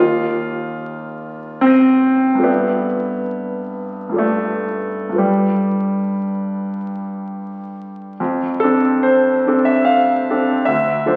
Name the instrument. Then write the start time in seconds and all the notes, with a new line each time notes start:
grand piano
Already playing: D#2 F4 G4 A#4 D#5
1.61 C4 G6
1.67 A#6 D#7
1.73 D#7
2.35 G2 F4
2.40 A4 D5
2.44 B3 E5
4.09 G2 F4
4.14 A4 D5
4.18 A3 E5
5.09 G2 F4
5.14 A4 B4 D5
5.18 G3
8.20 F2
8.60 C4 D4 A4
9.03 C5
9.47 C4 D4 A4
9.65 E5
9.85 F5
10.30 C4 D4 A4
10.65 D2 E5
11.06 F3 D4 A4 C5